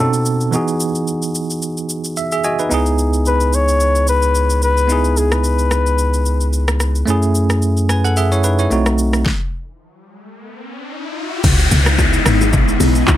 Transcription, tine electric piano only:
Already playing: B2 C#4
0.00 C4 D#4 F#4 A4
0.51 E3 B3 D#4 F#4
0.56 G#4
2.17 E5
2.32 G#4 E5
2.44 F#4 D#5 G#5
2.59 D#4 B4
2.69 B3 D#4 E4
2.74 G#4
4.87 B3 D#4 E4
4.92 G#4
7.06 A3 C#4 E4
7.10 G#4
7.90 B4 G#5
8.05 A4 F#5
8.17 G#4 E5
8.32 E4 C#5
8.44 D#4 B4
8.59 E4 C#5
8.70 A3 C4 D#4 F#4

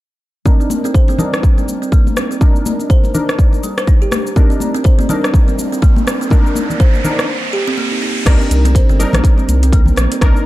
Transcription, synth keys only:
0.46 D4 D#4 A#4
1.19 D4 D#4 A#4
2.41 D4 D#4 A#4
3.14 D4 D#4 A#4
4.37 D4 D#4 A#4
5.10 D4 D#4 A#4
6.31 D4 D#4 A#4
7.04 D4 D#4 A#4
8.26 D4 D#4 A#4
8.99 D4 D#4 A#4
10.21 D4 D#4 A#4

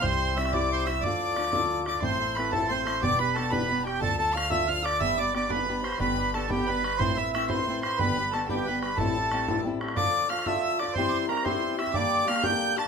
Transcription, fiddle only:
0.02 C6
0.37 E6
0.53 D6
0.86 E6
1.03 D6
1.87 D6
2.02 C6
2.35 B5
2.51 A5
2.68 C6
2.85 C6
3.02 D6
3.19 B5
3.35 A5
3.50 B5
3.85 G5
4.00 A5
4.20 A5
4.34 F6
4.50 E6
4.69 F6
4.85 D6
5.01 E6
5.18 D6
5.35 D6
5.50 B5
6.01 B5
6.34 A5
6.50 G5
6.66 B5
6.99 C6
7.18 E6
7.33 E6
7.50 C6
7.83 C6
7.99 B5
8.33 A5
8.48 G5
8.83 B5
8.99 A5
9.97 D6
10.29 F6
10.46 E6
10.63 E6
10.79 D6
10.96 C6
11.09 D6
11.18 C6
11.29 A#5
11.45 C6
11.79 E6
11.94 D6
12.28 F6
12.43 G6
12.78 A5

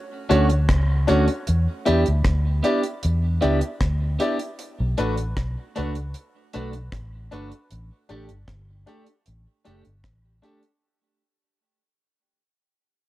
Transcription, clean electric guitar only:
0.29 A3 C#4 F#4
0.50 muted clean electric guitar stroke
1.08 A3 C#4 F#4
1.86 B3 D4 G4
2.63 B3 D4 G4
3.41 B3 D4 G4
3.61 muted clean electric guitar stroke
4.19 B3 D4 G4
4.98 A3 D4 F#4
5.76 A3 D4 F#4
6.54 A3 D4 F#4
6.74 muted clean electric guitar stroke
7.32 A3 D4 F#4
8.09 A3 D4 G4
8.87 A3 D4 G4
9.65 A3 D4 G4
9.84 muted clean electric guitar stroke
10.42 A3 D4 G4

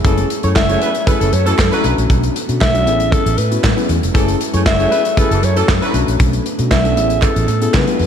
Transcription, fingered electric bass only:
0.05 F#1
0.44 F#2
0.56 F#1
1.21 F#1
1.33 F#2
1.59 F#2
1.84 B1
1.98 A#1
2.10 B1
2.49 B2
2.61 B1
2.87 A1
3.26 A1
3.38 A2
3.64 A2
3.89 E2
4.03 F1
4.15 F#1
4.54 F#2
4.66 F#1
5.31 F#1
5.43 F#2
5.69 F#2
5.94 B1
6.08 A#1
6.20 B1
6.59 B2
6.71 B1
6.97 A1
7.36 A1
7.48 A2
7.74 C#3
8.00 F2

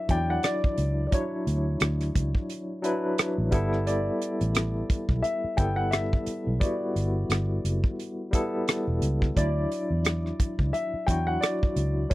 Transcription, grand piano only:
Already playing: E5
0.11 G5
0.30 F#5
0.44 D5
1.07 D5
1.13 C#5
3.87 D5
5.22 E5
5.57 G5
5.76 F#5
5.91 E5
6.60 D5
9.37 D5
10.73 E5
11.07 G5
11.27 F#5
11.41 D5
12.10 C#5

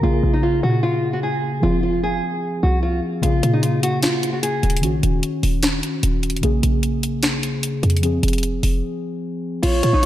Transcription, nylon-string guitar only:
0.03 F4
0.33 D#4
0.43 F4
0.63 F#4
0.83 F4
1.13 F#4
1.23 G#4
1.63 F4
1.83 F4
2.03 G#4
2.63 F#4
2.83 F4
3.23 F4
3.53 D#4
3.63 F4
3.83 F#4
4.03 F4
4.33 F#4
4.43 G#4
9.63 F4
9.93 D#4
10.03 F4

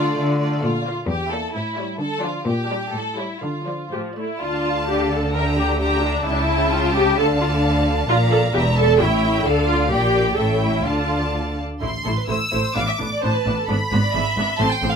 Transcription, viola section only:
Already playing: A3 F4
0.41 A3 F4
0.87 A#3 F4
1.31 A#3 E4
1.77 G3 E4
2.22 F3 D4
2.70 G3 D4
3.17 G3 E4
3.67 F3 F4
3.92 F3 G4
4.17 A3 E4
4.41 F4
4.88 G4
5.11 A4
5.35 A#4
5.58 G4
5.79 G4
6.03 D4
6.26 E4
6.33 D4
6.40 E4
6.72 F4
6.95 G4
7.18 A4
7.41 F4
8.08 F4
8.31 A4
8.54 G4
8.78 A4
9.00 E4
9.44 A4
9.67 F4
9.90 G4
10.36 A4
10.60 E4
10.85 F4
11.81 A3 E4
12.05 A3 E4
12.28 A3 E4
12.51 A3 E4
12.75 B3 D4
12.99 B3 D4
13.23 B3 D4
13.46 B3 D4
13.69 B3 D4
13.92 B3 D4
14.15 B3 D4
14.38 B3 D4
14.60 A3 C4
14.83 A3 C4

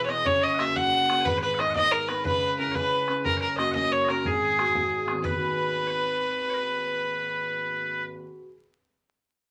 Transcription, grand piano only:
Already playing: E1 E2
0.09 B3 E4 G#4
0.26 F#1 F#2
0.58 A#3 F#4 G#4
0.75 A#3 F#4 G#4
1.09 A#3 F#4 G#4
1.26 G#1 G#2
1.59 B3 D#4 G#4
1.75 B3 D#4 G#4
2.09 B3 D#4 G#4
2.26 C#2
2.58 C#4 E4 G#4
2.75 C#4 E4 G#4
3.08 C#4 E4 G#4
3.25 F#1 F#2
3.58 A#3 C#4 F#4
3.74 A#3 C#4 F#4
4.08 A#3 C#4 F#4
4.25 G#1 G#2
4.58 G#3 B3 F#4
4.75 G#3 B3 F#4
5.06 G#1 G#3 B3 F#4
5.14 D#2
5.21 D#3
5.29 B3
5.36 F#4
5.44 G#4

